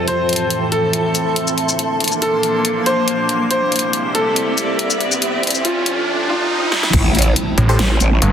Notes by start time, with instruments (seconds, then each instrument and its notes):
Already playing: ambient pad C4 A4 C5 G5 A5
0.08 ambient pad A2 E3 A4, grand piano C5, closed hi-hat, riser
0.26 ambient pad E5, closed hi-hat
0.33 closed hi-hat
0.36 closed hi-hat
0.50 closed hi-hat
0.63 ambient pad C6
0.72 grand piano A4, closed hi-hat
0.93 closed hi-hat
1.15 closed hi-hat, shaker
1.36 closed hi-hat
1.48 shaker
1.58 closed hi-hat
1.69 shaker
1.79 ambient pad A#2 F3 A#3 D4, closed hi-hat
2.00 ambient pad F5, closed hi-hat
2.04 closed hi-hat
2.08 closed hi-hat
2.12 shaker
2.22 grand piano A4, closed hi-hat
2.43 closed hi-hat
2.50 ambient pad D6
2.65 closed hi-hat
2.86 grand piano C5, closed hi-hat
3.08 closed hi-hat
3.29 closed hi-hat
3.50 ambient pad C3 G3 C4 E4 C5, grand piano C5, closed hi-hat
3.67 ambient pad G4 D5
3.72 closed hi-hat
3.76 closed hi-hat
3.79 closed hi-hat
3.88 ambient pad E5
3.93 closed hi-hat
4.15 grand piano A4, closed hi-hat
4.36 closed hi-hat
4.58 closed hi-hat, shaker
4.79 closed hi-hat
4.90 shaker
5.01 closed hi-hat
5.12 shaker
5.22 ambient pad F2 F3 F4 A4, closed hi-hat
5.43 closed hi-hat
5.47 closed hi-hat
5.50 closed hi-hat
5.55 shaker
5.65 grand piano F4, closed hi-hat
5.86 closed hi-hat
6.29 grand piano F4
6.72 snare
6.83 snare
6.93 wobble bass A1, ambient pad G3 A3 C4, kick, closed hi-hat, crash, impact
7.15 closed hi-hat
7.19 closed hi-hat
7.22 closed hi-hat
7.36 closed hi-hat
7.58 detuned saw bass A1, closed hi-hat
7.69 supersaw synth G4 A4 C5
7.79 wobble bass A1, snare, closed hi-hat
8.00 wobble bass A1, closed hi-hat, shaker
8.22 detuned saw bass G1, closed hi-hat